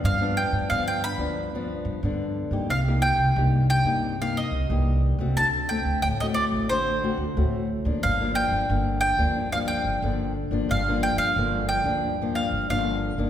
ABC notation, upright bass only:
X:1
M:4/4
L:1/16
Q:1/4=90
K:Gm
V:1 name="Upright bass" clef=bass
G,,3 G,, G,,3 D,,4 G,, G,,3 G,, | C,,3 C,, C,,3 G,,4 C,, C,,3 C,, | D,,3 D,, D,,3 A,,,4 D,, D,,3 D,, | G,,,3 G,,, G,,,3 D,,4 G,,, G,,,3 G,,, |
G,,,3 G,,, G,,,3 D,,4 G,,, G,,,3 G,,, |]